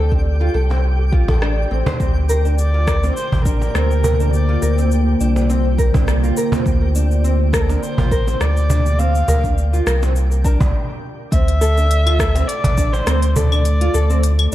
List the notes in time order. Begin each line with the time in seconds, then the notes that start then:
Already playing: D2 G4 A4 G5
0.12 D4, kick
0.41 F4
0.54 C2 A4
0.70 C4, cajon slap
1.13 F4, kick
1.28 A1 A4, kick, cajon bass, cajon slap
1.42 D4, cross-stick
1.71 A1 C4
1.86 C5, cajon bass, cajon slap
2.00 D2 D3 C4, kick, shaker
2.29 A#3 A#4, shaker
2.45 D4, shaker
2.58 D5, shaker
2.74 F4
2.82 F4 C5
2.87 A#4, kick, cross-stick, shaker
3.03 C4, cajon slap, shaker
3.16 C5, shaker
3.32 A1, cajon bass
3.45 D4 A#4, kick, shaker
3.62 cajon slap, shaker
3.75 D2 C4, cross-stick, shaker
3.91 shaker
4.04 A#4, cajon bass, shaker
4.20 D4, shaker
4.33 D5, shaker
4.49 F4
4.62 D2 A#4, cajon slap, shaker
4.78 C4, shaker
4.91 shaker
5.20 C2 D4, shaker
5.36 cajon slap, shaker
5.50 C4, shaker
5.78 A#4, kick, shaker
5.94 D4, kick, cajon bass, cajon slap, shaker
6.08 cross-stick, shaker
6.24 F4, shaker
6.37 A#4, shaker
6.52 C4, cajon bass, cajon slap, shaker
6.66 D2, kick, shaker
6.95 D4, shaker
7.11 shaker
7.24 C4, shaker
7.53 A#4, kick, cross-stick, shaker
7.61 A4
7.69 D4 A#4, cajon slap, shaker
7.83 C5, shaker
7.98 A1 F4, cajon bass
8.11 A#4, kick, shaker
8.27 C4, cajon slap, shaker
8.41 D2 D5, cross-stick, shaker
8.57 shaker
8.70 D4, cajon bass, shaker
8.86 shaker
8.99 C4 F5, shaker
9.15 shaker
9.28 D2 A#4, cajon bass, cajon slap, shaker
9.44 D4, kick, cajon slap, shaker
9.58 shaker
9.73 F4, shaker
9.86 C2 A#4, cross-stick, shaker
10.03 C4, cajon slap, shaker
10.16 shaker
10.32 shaker
10.45 D4 A#4, kick, shaker
10.60 kick, cajon bass, cajon slap, shaker
11.31 D2 C4 E5, kick, closed hi-hat, shaker
11.48 closed hi-hat
11.61 A4, shaker
11.77 A3 D4, shaker
11.91 closed hi-hat, shaker
12.06 F4, closed hi-hat, claves
12.19 A4, kick, cross-stick, shaker
12.35 C4, cajon slap, closed hi-hat, shaker
12.47 D5, closed hi-hat, shaker
12.64 A1, cajon bass, closed hi-hat
12.78 D4, kick, shaker
12.93 C5, cajon slap, shaker
13.07 D2 C4, cross-stick, closed hi-hat, shaker
13.22 closed hi-hat, shaker
13.36 A4 D5, cajon bass, shaker
13.52 D4, claves, shaker
13.65 closed hi-hat, shaker
13.81 F4, closed hi-hat
13.94 D2 A4, cajon slap, shaker
14.10 C4, shaker
14.23 closed hi-hat, shaker
14.39 closed hi-hat, claves